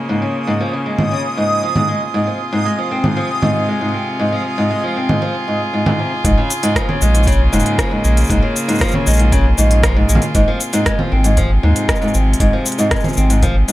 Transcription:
Already playing: string quartet C#3 A#3 F4 G#4, synth texture D#6
0.09 nylon-string guitar G#2
0.22 nylon-string guitar C#3
0.47 nylon-string guitar G#2
0.60 nylon-string guitar F3
0.73 nylon-string guitar C#3
0.86 nylon-string guitar G#3
0.99 nylon-string guitar G#2, low conga
1.12 nylon-string guitar C#3
1.37 nylon-string guitar G#2
1.63 nylon-string guitar F3
1.76 nylon-string guitar G#2, low conga
1.88 nylon-string guitar G#3
2.14 nylon-string guitar G#2, string quartet C3
2.27 nylon-string guitar F3
2.53 nylon-string guitar G#2
2.65 nylon-string guitar G#3, string quartet G#3
2.79 nylon-string guitar F3
2.91 nylon-string guitar C4
3.04 nylon-string guitar G#2, low conga
3.17 nylon-string guitar F3
3.42 nylon-string guitar G#2, low conga
3.68 nylon-string guitar G#3
3.81 nylon-string guitar G#2
3.94 nylon-string guitar C4
4.19 nylon-string guitar G#2
4.32 nylon-string guitar F3
4.58 nylon-string guitar G#2
4.71 nylon-string guitar G#3
4.84 nylon-string guitar F3
4.96 nylon-string guitar C4
5.09 nylon-string guitar G#2, low conga
5.22 nylon-string guitar F3
5.48 nylon-string guitar G#2
5.73 nylon-string guitar G#2
5.86 nylon-string guitar G#2, low conga
5.99 nylon-string guitar C3
6.25 sub bass A#1, nylon-string guitar G#2, string quartet C#3, kick, open hi-hat, cabasa
6.38 nylon-string guitar C#3
6.50 open hi-hat, cabasa
6.63 nylon-string guitar G#2, open hi-hat, cabasa
6.68 string quartet A#3
6.76 nylon-string guitar F3, kick, cross-stick, open hi-hat, cabasa
6.89 nylon-string guitar C#3, low conga
7.02 sub bass A#1, nylon-string guitar G#3, cabasa
7.14 nylon-string guitar G#2, open hi-hat, cabasa
7.23 nylon-string guitar C#3, kick, cabasa
7.28 open hi-hat, cabasa
7.32 cabasa
7.53 sub bass F1, nylon-string guitar G#2, cabasa
7.60 cabasa
7.66 open hi-hat
7.78 nylon-string guitar F3, kick, cross-stick, open hi-hat, cabasa
7.91 nylon-string guitar G#2
8.04 sub bass A#1, nylon-string guitar G#3, cabasa
8.17 open hi-hat, cabasa
8.21 cabasa
8.24 cabasa
8.27 sub bass A#1, nylon-string guitar G#2, kick, open hi-hat, cabasa
8.30 cabasa
8.42 nylon-string guitar C#3
8.56 open hi-hat, cabasa
8.68 nylon-string guitar G#2, open hi-hat, cabasa
8.72 cabasa
8.75 cabasa
8.78 nylon-string guitar F3, kick, cross-stick, open hi-hat, cabasa
8.85 cabasa
8.88 cabasa
8.91 nylon-string guitar C#3, low conga, cabasa
9.07 sub bass A#1, nylon-string guitar G#3, cabasa
9.10 cabasa
9.13 cabasa
9.17 nylon-string guitar G#2, open hi-hat, cabasa
9.32 nylon-string guitar C#3, kick, open hi-hat, cabasa
9.58 sub bass A#1, nylon-string guitar G#2, cabasa
9.71 open hi-hat, cabasa
9.83 nylon-string guitar F3, kick, cross-stick, open hi-hat, cabasa
9.96 nylon-string guitar G#2
10.09 sub bass A#1, nylon-string guitar G#3, cabasa
10.15 low conga
10.22 open hi-hat, cabasa
10.35 sub bass G#1, nylon-string guitar G#2, string quartet C3, kick, open hi-hat, cabasa
10.48 nylon-string guitar F3
10.60 open hi-hat, cabasa
10.73 nylon-string guitar G#2, string quartet G#3, open hi-hat, cabasa
10.86 nylon-string guitar G#3, kick, cross-stick, open hi-hat, cabasa
10.99 nylon-string guitar F3, low conga
11.12 sub bass G#1, nylon-string guitar C4
11.24 nylon-string guitar G#2, open hi-hat, cabasa
11.37 nylon-string guitar F3, kick, open hi-hat, cabasa
11.63 sub bass D#2, nylon-string guitar G#2
11.76 open hi-hat, cabasa
11.89 nylon-string guitar G#3, kick, cross-stick, open hi-hat, cabasa
11.95 cabasa
12.02 nylon-string guitar G#2, cabasa
12.08 cabasa
12.14 sub bass G#1, nylon-string guitar C4, cabasa
12.33 open hi-hat
12.40 sub bass G#1, nylon-string guitar G#2, kick, open hi-hat, cabasa
12.53 nylon-string guitar F3
12.66 open hi-hat, cabasa
12.72 open hi-hat
12.79 nylon-string guitar G#2, cabasa
12.91 nylon-string guitar G#3, kick, cross-stick, open hi-hat, cabasa
12.96 cabasa
13.00 cabasa
13.04 nylon-string guitar F3, low conga, cabasa
13.09 cabasa
13.13 cabasa
13.17 sub bass G#1, nylon-string guitar C4, cabasa
13.30 nylon-string guitar G#2, open hi-hat, cabasa
13.43 nylon-string guitar F3, kick, open hi-hat, cabasa
13.68 nylon-string guitar G#2, open hi-hat, cabasa

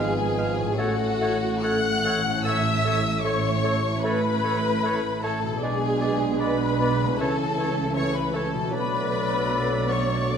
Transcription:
Already playing: double bass section G#1, harp G#2 B3 F4 G#4, cello section G#2, trombone section G#2 F3, bassoon G#3, french horn section B3 B4, violin section G#4 G#5, viola section G#4, clarinet B4, oboe F5, flute G#5
0.38 bassoon G#3, clarinet B4, oboe F5
0.60 harp A2
0.64 harp C#4
0.69 harp A4
0.73 double bass section A1, trombone section A2, harp C#5, violin section F#5
0.77 cello section A2, trombone section A3, bassoon A3, french horn section C#4 A4, viola section F#4, violin section F#4, clarinet A4, oboe C#5, flute F#5
1.20 bassoon A3, clarinet A4, oboe C#5
1.62 bassoon A3, clarinet A4, oboe C#5, viola section F#5, violin section F#5 F#6, flute F#6
2.04 bassoon A3, clarinet A4, oboe C#5
2.25 harp A2
2.30 harp C#4 A4
2.38 harp C#5
2.43 bassoon A3, french horn section E4, clarinet A4, oboe C#5, viola section E5, violin section E5 E6, flute E6
2.84 bassoon A3, clarinet A4, oboe C#5
3.22 bassoon A3, clarinet A4, violin section C#5 C#6, viola section C#5, oboe C#5, flute C#6
3.63 bassoon A3, clarinet A4, oboe C#5
4.02 bassoon A3, clarinet A4, viola section B4, violin section B4 B5, oboe C#5, flute B5
4.43 bassoon A3, clarinet A4, oboe C#5
4.83 bassoon A3, clarinet A4, oboe C#5
5.22 bassoon A3, viola section A4, violin section A4 A5, clarinet A4, oboe C#5, flute A5
5.43 harp B2
5.48 harp B3
5.52 harp G#4
5.57 harp D5
5.61 double bass section B1, trombone section B2 G#3, cello section B2, bassoon G#3, french horn section B3 D4, viola section G#4, violin section G#4 G#5, clarinet B4, oboe D5, flute G#5
6.01 bassoon G#3, clarinet B4, oboe D5
6.40 bassoon G#3, viola section B4, violin section B4 B5, clarinet B4, oboe D5, flute B5
6.79 bassoon G#3, clarinet B4, oboe D5
7.01 harp C#3
7.05 harp A3
7.10 harp E4
7.14 harp C#5, flute A5
7.18 double bass section C#2, cello section C#3, trombone section C#3 E3, bassoon E3, french horn section A3 C#4, viola section A4, violin section A4 A5, clarinet A4, oboe C#5
7.57 bassoon E3, clarinet A4, oboe C#5
7.95 bassoon E3, clarinet A4, viola section C#5, violin section C#5 C#6, oboe C#5, flute C#6
8.14 viola section B4, violin section B4 B5, flute B5
8.33 bassoon E3, violin section A4 A5, clarinet A4, viola section A4, oboe C#5, flute A5
8.53 harp B2
8.59 harp A3
8.63 harp F#4
8.68 bassoon F#3, french horn section D4, violin section B4, harp D5
8.72 double bass section B1, trombone section B2 F#3, cello section B2, clarinet A4, viola section B4, oboe D5, violin section B5, flute B5
9.89 viola section C#5, violin section C#5 C#6, flute C#6
10.29 bassoon F#3, clarinet A4, viola section D5, oboe D5, violin section D5 D6, flute D6

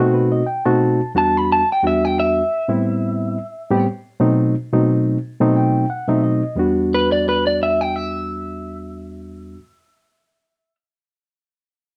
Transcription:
Already playing: reed electric piano B2 A3 C4
0.00 reed electric piano D#4 F#4
0.14 reed electric piano B4
0.32 reed electric piano D#5
0.47 reed electric piano G5
0.65 reed electric piano B2 A3 C4 D#4 F#4 A5
1.15 reed electric piano E2 G3 B3 D4 F#4, clean electric guitar A5
1.37 clean electric guitar B5
1.52 clean electric guitar A5
1.72 clean electric guitar G5
1.83 reed electric piano E2 G3 B3 D4 F#4
1.87 clean electric guitar E5
2.05 clean electric guitar G5
2.20 clean electric guitar E5
2.68 reed electric piano A2 G3 B3 C4 E4
3.71 reed electric piano A2 G3 B3 C4 G4
4.20 reed electric piano B2 F#3 A3 C4 D#4
4.72 reed electric piano B2 F#3 A3 C4 D#4
5.40 reed electric piano B2 F#3 A3 C4 D#4
5.56 reed electric piano G5
5.90 reed electric piano F#5
6.08 reed electric piano B2 F#3 A3 C4 D#4 E5
6.24 reed electric piano D#5
6.55 reed electric piano E2 G3 B3 D4 F#4
6.94 clean electric guitar B4
7.12 clean electric guitar D5
7.29 clean electric guitar B4
7.47 clean electric guitar D5
7.63 clean electric guitar E5
7.81 clean electric guitar G5
7.96 clean electric guitar E5

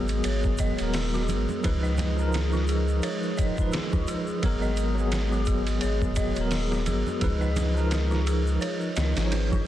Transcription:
Already playing: sub bass G#1, tine electric piano F#3 B3 G#4 A#4, ambient pad G#3 G#4, synth bell F#4 G#4 D#5
0.08 ride, shaker
0.24 sub bass G#1, synth bell C#5, ride, shaker
0.43 kick, shaker
0.58 synth bell D#5, kick, ride, shaker
0.77 sub bass D#1, tine electric piano F#3 B3, ride, shaker
0.82 tine electric piano A#4
0.94 synth bell G#4, snare, open hi-hat, shaker
1.14 synth bell F#4, snare, shaker
1.29 sub bass G#1, synth bell G#4, ride, low conga, shaker
1.49 low conga, shaker
1.63 sub bass C#2, tine electric piano F3 D#4 B4, synth bell G#4, kick, ride, shaker
1.83 synth bell D#5, shaker
1.97 snare, ride, low conga, shaker
2.16 tine electric piano F3 D#4, shaker
2.22 tine electric piano A#4
2.33 snare, ride, shaker
2.52 synth bell F4, snare, shaker
2.68 synth bell G#4, ride, shaker
2.88 shaker
3.02 synth bell C#5, ride, shaker
3.23 shaker
3.37 synth bell D#5, kick, ride, shaker
3.56 tine electric piano F3 D#4, kick, shaker
3.62 tine electric piano B4
3.72 synth bell G#4, snare, ride, shaker
3.93 sub bass C#2, synth bell F4, kick, low conga, shaker
4.08 synth bell G#4, ride, shaker
4.27 shaker
4.42 sub bass G#1, tine electric piano F#3 B3 A#4, synth bell G#4, kick, ride, shaker
4.62 synth bell D#5, shaker
4.77 ride, shaker
4.95 tine electric piano F#3 B3, shaker
5.01 tine electric piano G#4
5.12 snare, ride, shaker
5.32 synth bell F#4, shaker
5.46 synth bell G#4, kick, ride, shaker
5.67 ride, shaker
5.81 sub bass G#1, synth bell C#5, ride, shaker
6.02 kick, shaker
6.16 synth bell D#5, kick, ride, shaker
6.35 sub bass D#1, tine electric piano F#3 B3, ride, shaker
6.41 tine electric piano A#4
6.51 synth bell G#4, snare, open hi-hat, shaker
6.71 synth bell F#4, snare, shaker
6.86 sub bass G#1, synth bell G#4, ride, low conga, shaker
7.07 low conga, shaker
7.21 sub bass C#2, tine electric piano F3 D#4 B4, synth bell G#4, kick, ride, shaker
7.41 synth bell D#5, shaker
7.56 snare, ride, low conga, shaker
7.75 tine electric piano F3 D#4, shaker
7.80 tine electric piano A#4
7.91 snare, ride, shaker
8.11 synth bell F4, snare, shaker
8.27 synth bell G#4, ride, shaker
8.47 shaker
8.61 synth bell C#5, ride, shaker
8.81 shaker
8.96 sub bass C#2, synth bell D#5, snare, ride, shaker
9.15 sub bass G#1, tine electric piano F3 D#4 C#5, snare, ride, shaker
9.31 synth bell B4, snare, ride, shaker
9.51 synth bell F4, kick, low conga, shaker

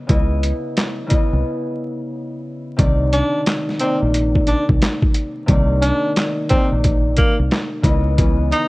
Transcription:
0.07 fingered electric bass C#2, harp C#3 B3 E4 D#5, kick, closed hi-hat
0.43 closed hi-hat
0.77 snare, clap, closed hi-hat
1.06 harp C#3 B3 E4 D#5, closed hi-hat
1.11 kick
1.33 fingered electric bass C2
2.77 fingered electric bass C2, harp C3 D#3 A#3 D5, kick, closed hi-hat
3.13 tenor saxophone D4, closed hi-hat
3.46 snare, clap, closed hi-hat
3.69 snare
3.80 harp C3 A#3 D#4 D5, tenor saxophone C4, closed hi-hat
4.02 fingered electric bass A#1
4.14 closed hi-hat
4.35 kick
4.47 tenor saxophone D4, closed hi-hat
4.69 fingered electric bass C2, kick
4.82 snare, clap, closed hi-hat
5.02 kick
5.14 closed hi-hat
5.46 fingered electric bass C2, harp C3 D#3 A#3 D5, kick, closed hi-hat
5.82 tenor saxophone D4, closed hi-hat
6.16 snare, clap, closed hi-hat
6.49 harp C3 A#3 D#4 D5, tenor saxophone C4, kick, closed hi-hat
6.72 fingered electric bass A#1
6.84 kick, closed hi-hat
7.16 tenor saxophone A#3, kick, closed hi-hat
7.39 fingered electric bass C2
7.51 snare, clap, closed hi-hat
7.82 fingered electric bass C#2, harp C#3 B3 E4 D#5, kick, closed hi-hat
8.17 harp C#3 E3 B3 D#5, kick, closed hi-hat
8.52 tenor saxophone D#4, closed hi-hat

